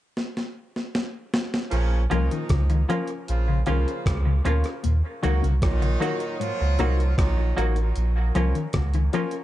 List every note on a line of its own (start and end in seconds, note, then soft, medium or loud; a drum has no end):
0.17 snare medium
0.37 snare medium
0.76 snare medium
0.95 snare medium
1.34 snare loud
1.54 snare medium
1.71 2.07 A#1 loud
1.71 2.03 A#2 loud
1.71 2.03 C#3 loud
1.71 2.03 F3 loud
1.71 2.03 C#4 loud
1.71 closed hi-hat medium
2.10 2.29 C2 medium
2.10 2.84 A#2 medium
2.10 2.84 D#3 medium
2.10 2.84 F3 medium
2.10 2.30 F3 medium
2.10 2.22 F3 medium
2.10 2.30 A#3 medium
2.10 2.30 C#4 medium
2.10 2.30 C#4 loud
2.10 2.84 D#4 medium
2.10 2.30 F4 medium
2.10 2.31 F4 medium
2.10 2.30 A#4 loud
2.10 closed hi-hat medium
2.31 2.42 D#3 medium
2.31 closed hi-hat medium
2.49 2.85 C#2 medium
2.49 2.61 C#3 medium
2.49 kick loud
2.49 cross-stick loud
2.49 closed hi-hat medium
2.70 2.80 D#3 medium
2.70 muted clean electric guitar stroke medium
2.70 closed hi-hat medium
2.88 3.00 F3 medium
2.88 3.08 F3 medium
2.88 3.09 A#3 medium
2.88 3.07 C#4 medium
2.88 3.09 C#4 medium
2.88 3.08 F4 medium
2.88 3.09 F4 medium
2.88 3.08 A#4 loud
2.88 closed hi-hat medium
3.07 closed hi-hat soft
3.28 3.64 A#1 medium
3.28 3.59 C#3 medium
3.28 3.59 F3 medium
3.28 3.59 A#3 medium
3.28 3.59 F4 loud
3.28 closed hi-hat medium
3.48 3.58 C#3 medium
3.48 muted clean electric guitar stroke soft
3.66 3.86 C2 loud
3.66 4.41 C#3 medium
3.66 3.78 D#3 medium
3.66 3.86 F3 medium
3.66 4.41 F3 medium
3.66 3.86 A#3 medium
3.66 4.41 A#3 medium
3.66 3.85 C#4 medium
3.66 3.86 C#4 medium
3.66 3.86 F4 medium
3.66 4.41 F4 medium
3.66 3.87 F4 loud
3.66 3.86 A#4 loud
3.66 closed hi-hat medium
3.88 closed hi-hat soft
4.06 4.41 C#2 loud
4.06 kick loud
4.06 cross-stick loud
4.06 closed hi-hat loud
4.25 4.36 C#3 medium
4.25 muted clean electric guitar stroke medium
4.44 4.63 D2 loud
4.44 4.56 A#2 medium
4.44 4.64 F3 loud
4.44 4.65 A#3 loud
4.44 4.64 C#4 medium
4.44 4.65 C#4 loud
4.44 4.64 F4 medium
4.44 4.65 F4 loud
4.44 4.64 A#4 medium
4.44 closed hi-hat medium
4.64 4.72 F4 soft
4.64 4.73 A#4 soft
4.64 cross-stick medium
4.64 closed hi-hat soft
4.83 5.02 D#2 loud
4.83 4.95 A#2 medium
4.83 closed hi-hat medium
5.22 5.42 C#2 loud
5.22 5.34 D#3 medium
5.22 5.54 D#3 medium
5.22 5.54 F#3 medium
5.22 5.42 F#3 loud
5.22 5.54 A#3 medium
5.22 5.43 A#3 medium
5.22 5.42 D#4 medium
5.22 5.43 D#4 medium
5.22 5.54 F#4 medium
5.22 5.42 F#4 medium
5.22 5.43 F#4 medium
5.22 5.42 A#4 medium
5.22 closed hi-hat medium
5.42 5.61 C2 medium
5.42 5.53 C#3 medium
5.42 closed hi-hat soft
5.62 5.97 A#1 medium
5.62 6.36 A#2 loud
5.62 6.36 D#3 loud
5.62 6.36 F#3 loud
5.62 6.36 D#4 loud
5.62 kick loud
5.62 cross-stick loud
5.62 closed hi-hat medium
5.81 5.92 C#3 medium
5.81 muted clean electric guitar stroke soft
5.81 closed hi-hat medium
6.00 6.12 D#3 medium
6.00 6.20 F#3 medium
6.00 6.20 A#3 medium
6.00 6.19 D#4 medium
6.00 6.21 D#4 loud
6.00 6.20 F#4 medium
6.00 6.21 F#4 loud
6.00 6.20 A#4 medium
6.00 closed hi-hat medium
6.20 closed hi-hat medium
6.39 6.51 G#2 medium
6.39 7.14 A#2 loud
6.39 7.14 F3 loud
6.39 7.14 F#3 loud
6.39 7.14 F4 loud
6.39 closed hi-hat medium
6.60 6.78 C#2 medium
6.60 muted clean electric guitar stroke soft
6.79 7.15 C2 loud
6.79 6.90 A#2 medium
6.79 6.99 F#3 medium
6.79 6.99 A#3 medium
6.79 6.98 D#4 loud
6.79 6.99 D#4 loud
6.79 6.98 F#4 medium
6.79 6.99 F#4 medium
6.79 6.98 A#4 loud
6.79 closed hi-hat medium
7.00 closed hi-hat soft
7.17 7.53 A#1 medium
7.17 7.73 A#2 loud
7.17 7.73 D#3 loud
7.17 7.73 F#3 loud
7.17 7.73 D#4 loud
7.17 kick loud
7.17 cross-stick loud
7.17 closed hi-hat medium
7.37 muted clean electric guitar stroke medium
7.56 7.92 A1 loud
7.56 7.76 F#3 medium
7.56 7.76 A#3 loud
7.56 7.76 D#4 medium
7.56 7.77 D#4 medium
7.56 7.76 F#4 medium
7.56 7.77 F#4 medium
7.56 7.76 A#4 medium
7.56 closed hi-hat medium
7.76 7.85 F#4 soft
7.76 7.85 A#4 soft
7.76 closed hi-hat soft
7.96 8.31 A#1 loud
7.96 closed hi-hat medium
8.35 8.53 C2 loud
8.35 8.46 F3 medium
8.35 8.54 F3 medium
8.35 8.55 A#3 medium
8.35 8.54 C#4 medium
8.35 8.55 C#4 loud
8.35 8.54 F4 medium
8.35 8.55 F4 medium
8.35 8.55 A#4 loud
8.35 closed hi-hat medium
8.55 8.65 D#3 medium
8.55 closed hi-hat soft
8.73 9.09 C#2 medium
8.73 8.85 C#3 medium
8.73 kick loud
8.73 cross-stick loud
8.73 closed hi-hat medium
8.94 9.05 D#3 medium
8.94 muted clean electric guitar stroke soft
8.94 closed hi-hat medium
9.13 9.24 F3 medium
9.13 9.33 F3 medium
9.13 9.33 A#3 medium
9.13 9.32 C#4 loud
9.13 9.33 C#4 medium
9.13 9.32 F4 medium
9.13 9.33 F4 medium
9.13 9.32 A#4 loud
9.13 closed hi-hat medium
9.31 closed hi-hat medium